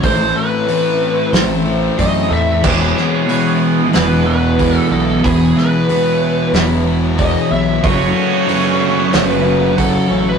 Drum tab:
CC |--------|x-------|--------|--------|
HH |o-o-o-o-|--o-o-o-|o-o-o-o-|o-o-o-o-|
SD |----o---|-o--o---|-o--o---|----o---|
BD |o-----o-|o-----o-|o-----o-|o-----o-|